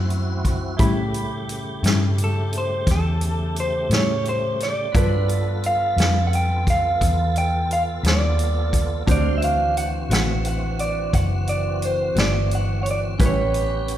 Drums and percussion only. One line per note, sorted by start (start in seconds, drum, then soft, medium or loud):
0.10 closed hi-hat soft
0.45 kick medium
0.45 closed hi-hat soft
0.79 kick loud
0.79 closed hi-hat medium
1.14 closed hi-hat medium
1.49 closed hi-hat medium
1.84 snare loud
1.84 closed hi-hat medium
2.18 closed hi-hat medium
2.53 closed hi-hat medium
2.87 kick medium
2.87 snare soft
2.87 closed hi-hat medium
3.21 closed hi-hat medium
3.56 closed hi-hat medium
3.91 snare medium
3.91 closed hi-hat medium
4.25 closed hi-hat soft
4.60 snare soft
4.60 closed hi-hat medium
4.95 kick loud
4.95 closed hi-hat medium
5.29 closed hi-hat medium
5.63 closed hi-hat medium
5.98 snare loud
5.98 closed hi-hat medium
6.33 closed hi-hat medium
6.67 kick medium
6.67 closed hi-hat medium
7.01 kick medium
7.01 closed hi-hat medium
7.36 closed hi-hat medium
7.71 closed hi-hat medium
8.04 snare medium
8.04 closed hi-hat medium
8.39 closed hi-hat medium
8.73 kick medium
8.73 closed hi-hat medium
9.07 kick loud
9.07 closed hi-hat medium
9.42 closed hi-hat medium
9.77 closed hi-hat medium
10.11 snare loud
10.11 closed hi-hat medium
10.45 closed hi-hat medium
10.79 closed hi-hat medium
11.13 kick medium
11.13 closed hi-hat medium
11.47 closed hi-hat medium
11.82 closed hi-hat medium
12.16 snare loud
12.16 closed hi-hat medium
12.51 closed hi-hat medium
12.86 closed hi-hat medium
13.20 kick loud
13.20 closed hi-hat medium
13.54 closed hi-hat medium
13.88 closed hi-hat medium